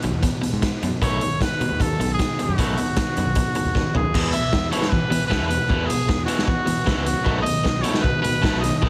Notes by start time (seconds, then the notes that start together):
0.02 B1 E2 B2, closed hi-hat
0.12 E2
0.22 E2 B2, kick, closed hi-hat
0.41 E2 B2, closed hi-hat
0.53 G#2
0.62 E2 B2, kick, snare, closed hi-hat
0.82 E2 F#2 B2, closed hi-hat
1.02 B1 B2 D#3 A3 C#5, kick, closed hi-hat
1.21 B2 D#3, closed hi-hat
1.41 B2 D#3 B4, kick, snare, closed hi-hat
1.60 B2 D#3, closed hi-hat
1.71 D#2
1.80 B2 D#3 A4, kick, closed hi-hat
1.99 B1 B2 D#3, closed hi-hat
2.14 G#4
2.19 B2 D#3, kick, snare, closed hi-hat
2.39 B2 D#3, closed hi-hat
2.43 F#4
2.48 F#2
2.58 B1 B2 D#3 A3, kick, closed hi-hat
2.77 B2 D#3, closed hi-hat
2.96 B2 D#3, kick, snare, closed hi-hat
3.17 F#2 B2 D#3, closed hi-hat
3.26 B1
3.35 B2 D#3, kick, closed hi-hat
3.55 B2 D#3, closed hi-hat
3.65 D#2
3.75 B2 D#3, kick, snare
3.94 B1 B2 D#3 G#4, floor tom
4.14 E2 B2 E3 G#3 B3 E4, kick, crash
4.33 E2 B2 E5, muted distorted electric guitar stroke, closed hi-hat
4.53 E2 B2, muted distorted electric guitar stroke, kick, snare
4.71 E2 B2 E3 G#3 B3 E4 C#5, closed hi-hat
4.82 snare
4.90 E2 B2 E3 B4, muted distorted electric guitar stroke, kick
5.10 E2 B2 E3, muted distorted electric guitar stroke, closed hi-hat
5.27 E2 B2 E3 G#3 B3 E4 B4, kick
5.32 C#2, snare
5.40 E2
5.48 E2 B2 B4, muted distorted electric guitar stroke, closed hi-hat
5.67 E2 B2 E3 G#3 B3 E4, kick
5.87 E2 B2 G#4, muted distorted electric guitar stroke, closed hi-hat
6.07 E2 B2, muted distorted electric guitar stroke, kick, snare
6.26 E2 B2 E3 G#3 B3 E4 F#4, closed hi-hat
6.39 snare
6.45 E2 B2 E3 F#4, muted distorted electric guitar stroke, kick
6.65 E2 B2 E3, muted distorted electric guitar stroke, closed hi-hat
6.84 C#2 E2 B2 E3 G#3 B3 E4, kick, snare
6.96 C#2
7.04 E2 B2 F#4, muted distorted electric guitar stroke, closed hi-hat
7.23 B1 B2 D#3 F#3 A3 B3 D#4, kick
7.42 B2 D#3 D#5, muted distorted electric guitar stroke
7.46 closed hi-hat
7.64 B1 B2 D#3, muted distorted electric guitar stroke, kick, snare
7.82 B2 D#3 F#3 A3 B3 D#4 C#5, closed hi-hat
7.94 snare
8.01 B2 D#3 B4, muted distorted electric guitar stroke, kick
8.22 B2 D#3 B4, muted distorted electric guitar stroke, closed hi-hat
8.42 A1 B2 D#3 F#3 A3 B3 D#4, kick, snare
8.54 B1
8.61 B2 D#3 D#5, muted distorted electric guitar stroke, snare, closed hi-hat
8.79 B1 B2 D#3 F#3 D#5, kick
8.83 D#3 A3 B3 D#4